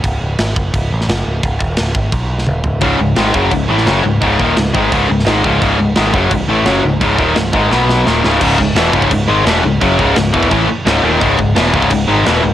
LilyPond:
<<
  \new Staff \with { instrumentName = "Distorted electric guitar" } { \clef bass \time 4/4 \key cis \minor \tempo 4 = 172 r1 | r1 | <cis, gis, cis>8 <cis, gis,>8 <gis, dis gis>8 <fis, cis fis>8 <cis, gis,>8 <a, e a>8 <fis, cis fis>8 <cis, gis,>8 | <cis, gis, cis>8 <dis, ais, dis>8 <cis, gis,>8 <gis, dis gis>8 <cis, gis, cis>8 <cis, gis,>8 <gis, dis gis>8 <cis, gis, cis>8 |
<cis, gis, cis>8 <cis, gis,>8 <gis, dis gis>8 <fis, cis fis>8 <cis, gis,>8 <a, e a>8 <fis, cis fis>8 <cis, gis,>8 | <cis, gis, cis>8 <dis, ais, dis>8 <cis, gis,>8 <gis, dis gis>8 <b, fis b>4 <dis, ais, dis>8 <cis, gis, cis>8 | <cis, gis, cis>8 <cis, gis,>8 <e, b, e>8 <cis, gis, cis>8 <cis, gis,>8 <gis, dis gis>8 <e, b, e>8 <cis, gis,>8 | <fis, cis fis>8 <cis, gis, cis>8 <cis, gis,>8 <e, b, e>8 <a, e a>8 r8 <cis, gis, cis>8 <dis, ais, dis>8 |
<cis, gis, cis>8 <cis, gis,>8 <e, b, e>8 <cis, gis, cis>8 <cis, gis,>8 <gis, dis gis>8 <e, b, e>8 <cis, gis,>8 | }
  \new Staff \with { instrumentName = "Distorted electric guitar" } { \clef bass \time 4/4 \key cis \minor r1 | r1 | <cis, gis, cis>8 <cis, gis,>8 <gis, dis gis>8 <fis, cis fis>8 <cis, gis,>8 <a, e a>8 <fis, cis fis>8 <cis, gis,>8 | <cis, gis, cis>8 <dis, ais, dis>8 <cis, gis,>8 <gis, dis gis>8 <cis, gis, cis>8 <cis, gis,>8 <gis, dis gis>8 <cis, gis, cis>8 |
<cis, gis, cis>8 <cis, gis,>8 <gis, dis gis>8 <fis, cis fis>8 <cis, gis,>8 <a, e a>8 <fis, cis fis>8 <cis, gis,>8 | <cis, gis, cis>8 <dis, ais, dis>8 <cis, gis,>8 <gis, dis gis>8 <b, fis b>4 <dis, ais, dis>8 <cis, gis, cis>8 | <cis, gis, cis>8 <cis, gis,>8 <e, b, e>8 <cis, gis, cis>8 <cis, gis,>8 <gis, dis gis>8 <e, b, e>8 <cis, gis,>8 | <fis, cis fis>8 <cis, gis, cis>8 <cis, gis,>8 <e, b, e>8 <a, e a>8 r8 <cis, gis, cis>8 <dis, ais, dis>8 |
<cis, gis, cis>8 <cis, gis,>8 <e, b, e>8 <cis, gis, cis>8 <cis, gis,>8 <gis, dis gis>8 <e, b, e>8 <cis, gis,>8 | }
  \new Staff \with { instrumentName = "Distorted electric guitar" } { \clef bass \time 4/4 \key cis \minor r1 | r1 | <cis, gis, cis>8 <cis, gis,>8 <gis, dis gis>8 <fis, cis fis>8 <cis, gis,>8 <a, e a>8 <fis, cis fis>8 <cis, gis,>8 | <cis, gis, cis>8 <dis, ais, dis>8 <cis, gis,>8 <gis, dis gis>8 <cis, gis, cis>8 <cis, gis,>8 <gis, dis gis>8 <cis, gis, cis>8 |
<cis, gis, cis>8 <cis, gis,>8 <gis, dis gis>8 <fis, cis fis>8 <cis, gis,>8 <a, e a>8 <fis, cis fis>8 <cis, gis,>8 | <cis, gis, cis>8 <dis, ais, dis>8 <cis, gis,>8 <gis, dis gis>8 <b, fis b>4 <dis, ais, dis>8 <cis, gis, cis>8 | <cis, gis, cis>8 <cis, gis,>8 <e, b, e>8 <cis, gis, cis>8 <cis, gis,>8 <gis, dis gis>8 <e, b, e>8 <cis, gis,>8 | <fis, cis fis>8 <cis, gis, cis>8 <cis, gis,>8 <e, b, e>8 <a, e a>8 r8 <cis, gis, cis>8 <dis, ais, dis>8 |
<cis, gis, cis>8 <cis, gis,>8 <e, b, e>8 <cis, gis, cis>8 <cis, gis,>8 <gis, dis gis>8 <e, b, e>8 <cis, gis,>8 | }
  \new Staff \with { instrumentName = "Picked electric bass" } { \clef bass \time 4/4 \key cis \minor cis,,8 cis,,8 gis,,8 fis,,8 cis,,8 a,,8 fis,,8 cis,,8 | cis,,8 dis,,8 cis,,8 gis,,8 b,,4 dis,,8 cis,,8 | cis,,8 cis,,8 gis,,8 fis,,8 cis,,8 a,,8 fis,,8 cis,,8 | cis,,8 dis,,8 cis,,8 gis,,8 cis,,8 cis,,8 gis,,8 cis,,8 |
cis,,8 cis,,8 gis,,8 fis,,8 cis,,8 a,,8 fis,,8 cis,,8 | cis,,8 dis,,8 cis,,8 gis,,8 b,,4 dis,,8 cis,,8 | cis,,8 cis,,8 e,,8 cis,,8 cis,,8 gis,,8 e,,8 cis,,8 | fis,,8 cis,,8 cis,,8 e,,8 a,,8 r8 cis,,8 dis,,8 |
cis,,8 cis,,8 e,,8 cis,,8 cis,,8 gis,,8 e,,8 cis,,8 | }
  \new DrumStaff \with { instrumentName = "Drums" } \drummode { \time 4/4 <cymc bd>4 <cymc sn>8 bd8 <cymc bd>8. sn16 <cymc sn>4 | <cymc bd>8 bd8 <cymc sn>8 bd8 <cymc bd>8. sn16 tommh8 tomfh8 | <cymc bd>4 <cymc sn>8 bd8 <cymc bd>8. sn16 <cymc sn>4 | <cymc bd>8 bd8 <cymc sn>8 bd8 <cymc bd>8. sn16 <cymc sn>8 bd8 |
<cymc bd>4 <cymc sn>8 bd8 <cymc bd>4 <cymc sn>4 | <cymc bd>8 bd8 <cymc sn>8 bd8 sn8 sn8 sn8 sn8 | <cymc bd>8 bd8 <cymc sn>8 bd16 bd16 <cymc bd>4 <cymc sn>4 | <cymc bd>8 bd8 <cymc sn>8 bd16 bd16 <cymc bd>4 <cymc sn>4 |
<cymc bd>8 bd8 <cymc sn>8 bd16 bd16 <cymc bd>4 <cymc sn>4 | }
>>